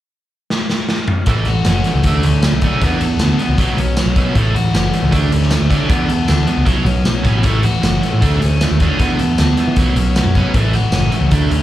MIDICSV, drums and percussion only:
0, 0, Header, 1, 2, 480
1, 0, Start_track
1, 0, Key_signature, 3, "major"
1, 0, Tempo, 386100
1, 1589, Time_signature, 4, 2, 24, 8
1, 14455, End_track
2, 0, Start_track
2, 0, Title_t, "Drums"
2, 626, Note_on_c, 9, 38, 67
2, 750, Note_off_c, 9, 38, 0
2, 865, Note_on_c, 9, 38, 71
2, 989, Note_off_c, 9, 38, 0
2, 1102, Note_on_c, 9, 38, 90
2, 1226, Note_off_c, 9, 38, 0
2, 1338, Note_on_c, 9, 45, 85
2, 1462, Note_off_c, 9, 45, 0
2, 1567, Note_on_c, 9, 42, 83
2, 1578, Note_on_c, 9, 36, 102
2, 1691, Note_off_c, 9, 42, 0
2, 1703, Note_off_c, 9, 36, 0
2, 1802, Note_on_c, 9, 42, 54
2, 1927, Note_off_c, 9, 42, 0
2, 2046, Note_on_c, 9, 42, 75
2, 2046, Note_on_c, 9, 54, 96
2, 2051, Note_on_c, 9, 38, 95
2, 2171, Note_off_c, 9, 42, 0
2, 2171, Note_off_c, 9, 54, 0
2, 2175, Note_off_c, 9, 38, 0
2, 2290, Note_on_c, 9, 42, 55
2, 2415, Note_off_c, 9, 42, 0
2, 2529, Note_on_c, 9, 42, 75
2, 2539, Note_on_c, 9, 36, 77
2, 2653, Note_off_c, 9, 42, 0
2, 2664, Note_off_c, 9, 36, 0
2, 2774, Note_on_c, 9, 42, 62
2, 2899, Note_off_c, 9, 42, 0
2, 3015, Note_on_c, 9, 42, 81
2, 3015, Note_on_c, 9, 54, 100
2, 3020, Note_on_c, 9, 38, 101
2, 3140, Note_off_c, 9, 42, 0
2, 3140, Note_off_c, 9, 54, 0
2, 3145, Note_off_c, 9, 38, 0
2, 3251, Note_on_c, 9, 42, 62
2, 3258, Note_on_c, 9, 36, 74
2, 3375, Note_off_c, 9, 42, 0
2, 3382, Note_off_c, 9, 36, 0
2, 3500, Note_on_c, 9, 36, 104
2, 3504, Note_on_c, 9, 42, 80
2, 3625, Note_off_c, 9, 36, 0
2, 3629, Note_off_c, 9, 42, 0
2, 3738, Note_on_c, 9, 42, 55
2, 3863, Note_off_c, 9, 42, 0
2, 3971, Note_on_c, 9, 42, 76
2, 3971, Note_on_c, 9, 54, 105
2, 3976, Note_on_c, 9, 38, 93
2, 4096, Note_off_c, 9, 42, 0
2, 4096, Note_off_c, 9, 54, 0
2, 4101, Note_off_c, 9, 38, 0
2, 4215, Note_on_c, 9, 42, 54
2, 4340, Note_off_c, 9, 42, 0
2, 4452, Note_on_c, 9, 42, 76
2, 4453, Note_on_c, 9, 36, 78
2, 4576, Note_off_c, 9, 42, 0
2, 4577, Note_off_c, 9, 36, 0
2, 4702, Note_on_c, 9, 42, 51
2, 4826, Note_off_c, 9, 42, 0
2, 4931, Note_on_c, 9, 42, 74
2, 4931, Note_on_c, 9, 54, 107
2, 4936, Note_on_c, 9, 38, 95
2, 5055, Note_off_c, 9, 42, 0
2, 5055, Note_off_c, 9, 54, 0
2, 5060, Note_off_c, 9, 38, 0
2, 5174, Note_on_c, 9, 36, 86
2, 5181, Note_on_c, 9, 42, 51
2, 5298, Note_off_c, 9, 36, 0
2, 5305, Note_off_c, 9, 42, 0
2, 5413, Note_on_c, 9, 42, 72
2, 5414, Note_on_c, 9, 36, 101
2, 5537, Note_off_c, 9, 42, 0
2, 5538, Note_off_c, 9, 36, 0
2, 5667, Note_on_c, 9, 42, 62
2, 5791, Note_off_c, 9, 42, 0
2, 5900, Note_on_c, 9, 42, 79
2, 5900, Note_on_c, 9, 54, 109
2, 5905, Note_on_c, 9, 38, 103
2, 6025, Note_off_c, 9, 42, 0
2, 6025, Note_off_c, 9, 54, 0
2, 6030, Note_off_c, 9, 38, 0
2, 6134, Note_on_c, 9, 42, 56
2, 6258, Note_off_c, 9, 42, 0
2, 6371, Note_on_c, 9, 36, 87
2, 6374, Note_on_c, 9, 42, 81
2, 6495, Note_off_c, 9, 36, 0
2, 6498, Note_off_c, 9, 42, 0
2, 6616, Note_on_c, 9, 42, 64
2, 6740, Note_off_c, 9, 42, 0
2, 6741, Note_on_c, 9, 38, 31
2, 6845, Note_on_c, 9, 42, 82
2, 6845, Note_on_c, 9, 54, 104
2, 6850, Note_off_c, 9, 38, 0
2, 6850, Note_on_c, 9, 38, 100
2, 6969, Note_off_c, 9, 42, 0
2, 6969, Note_off_c, 9, 54, 0
2, 6974, Note_off_c, 9, 38, 0
2, 7093, Note_on_c, 9, 36, 81
2, 7102, Note_on_c, 9, 42, 66
2, 7217, Note_off_c, 9, 36, 0
2, 7226, Note_off_c, 9, 42, 0
2, 7331, Note_on_c, 9, 36, 113
2, 7331, Note_on_c, 9, 42, 83
2, 7455, Note_off_c, 9, 36, 0
2, 7455, Note_off_c, 9, 42, 0
2, 7576, Note_on_c, 9, 42, 57
2, 7700, Note_off_c, 9, 42, 0
2, 7810, Note_on_c, 9, 42, 83
2, 7810, Note_on_c, 9, 54, 108
2, 7815, Note_on_c, 9, 38, 98
2, 7934, Note_off_c, 9, 42, 0
2, 7934, Note_off_c, 9, 54, 0
2, 7939, Note_off_c, 9, 38, 0
2, 8048, Note_on_c, 9, 42, 55
2, 8173, Note_off_c, 9, 42, 0
2, 8284, Note_on_c, 9, 42, 72
2, 8286, Note_on_c, 9, 36, 84
2, 8408, Note_off_c, 9, 42, 0
2, 8411, Note_off_c, 9, 36, 0
2, 8531, Note_on_c, 9, 42, 56
2, 8655, Note_off_c, 9, 42, 0
2, 8767, Note_on_c, 9, 42, 77
2, 8767, Note_on_c, 9, 54, 109
2, 8772, Note_on_c, 9, 38, 105
2, 8892, Note_off_c, 9, 42, 0
2, 8892, Note_off_c, 9, 54, 0
2, 8897, Note_off_c, 9, 38, 0
2, 9009, Note_on_c, 9, 36, 77
2, 9012, Note_on_c, 9, 42, 56
2, 9134, Note_off_c, 9, 36, 0
2, 9137, Note_off_c, 9, 42, 0
2, 9241, Note_on_c, 9, 42, 77
2, 9251, Note_on_c, 9, 36, 101
2, 9365, Note_off_c, 9, 42, 0
2, 9376, Note_off_c, 9, 36, 0
2, 9486, Note_on_c, 9, 42, 58
2, 9610, Note_off_c, 9, 42, 0
2, 9737, Note_on_c, 9, 42, 76
2, 9737, Note_on_c, 9, 54, 105
2, 9742, Note_on_c, 9, 38, 100
2, 9861, Note_off_c, 9, 42, 0
2, 9861, Note_off_c, 9, 54, 0
2, 9866, Note_off_c, 9, 38, 0
2, 9985, Note_on_c, 9, 42, 57
2, 10109, Note_off_c, 9, 42, 0
2, 10220, Note_on_c, 9, 42, 79
2, 10223, Note_on_c, 9, 36, 81
2, 10344, Note_off_c, 9, 42, 0
2, 10347, Note_off_c, 9, 36, 0
2, 10467, Note_on_c, 9, 42, 61
2, 10591, Note_off_c, 9, 42, 0
2, 10702, Note_on_c, 9, 42, 85
2, 10702, Note_on_c, 9, 54, 104
2, 10707, Note_on_c, 9, 38, 114
2, 10827, Note_off_c, 9, 42, 0
2, 10827, Note_off_c, 9, 54, 0
2, 10832, Note_off_c, 9, 38, 0
2, 10940, Note_on_c, 9, 42, 63
2, 10946, Note_on_c, 9, 36, 75
2, 11064, Note_off_c, 9, 42, 0
2, 11070, Note_off_c, 9, 36, 0
2, 11181, Note_on_c, 9, 42, 83
2, 11186, Note_on_c, 9, 36, 98
2, 11306, Note_off_c, 9, 42, 0
2, 11310, Note_off_c, 9, 36, 0
2, 11426, Note_on_c, 9, 42, 55
2, 11551, Note_off_c, 9, 42, 0
2, 11663, Note_on_c, 9, 42, 81
2, 11663, Note_on_c, 9, 54, 111
2, 11668, Note_on_c, 9, 38, 98
2, 11788, Note_off_c, 9, 42, 0
2, 11788, Note_off_c, 9, 54, 0
2, 11793, Note_off_c, 9, 38, 0
2, 11900, Note_on_c, 9, 42, 57
2, 12025, Note_off_c, 9, 42, 0
2, 12137, Note_on_c, 9, 42, 80
2, 12144, Note_on_c, 9, 36, 86
2, 12261, Note_off_c, 9, 42, 0
2, 12269, Note_off_c, 9, 36, 0
2, 12385, Note_on_c, 9, 42, 60
2, 12509, Note_off_c, 9, 42, 0
2, 12628, Note_on_c, 9, 42, 74
2, 12628, Note_on_c, 9, 54, 112
2, 12633, Note_on_c, 9, 38, 109
2, 12753, Note_off_c, 9, 42, 0
2, 12753, Note_off_c, 9, 54, 0
2, 12758, Note_off_c, 9, 38, 0
2, 12869, Note_on_c, 9, 42, 58
2, 12871, Note_on_c, 9, 36, 81
2, 12993, Note_off_c, 9, 42, 0
2, 12995, Note_off_c, 9, 36, 0
2, 13106, Note_on_c, 9, 42, 78
2, 13109, Note_on_c, 9, 36, 104
2, 13230, Note_off_c, 9, 42, 0
2, 13233, Note_off_c, 9, 36, 0
2, 13344, Note_on_c, 9, 42, 52
2, 13468, Note_off_c, 9, 42, 0
2, 13576, Note_on_c, 9, 42, 70
2, 13576, Note_on_c, 9, 54, 107
2, 13581, Note_on_c, 9, 38, 103
2, 13700, Note_off_c, 9, 42, 0
2, 13700, Note_off_c, 9, 54, 0
2, 13705, Note_off_c, 9, 38, 0
2, 13824, Note_on_c, 9, 42, 57
2, 13949, Note_off_c, 9, 42, 0
2, 14063, Note_on_c, 9, 42, 76
2, 14070, Note_on_c, 9, 36, 82
2, 14188, Note_off_c, 9, 42, 0
2, 14194, Note_off_c, 9, 36, 0
2, 14313, Note_on_c, 9, 42, 58
2, 14438, Note_off_c, 9, 42, 0
2, 14455, End_track
0, 0, End_of_file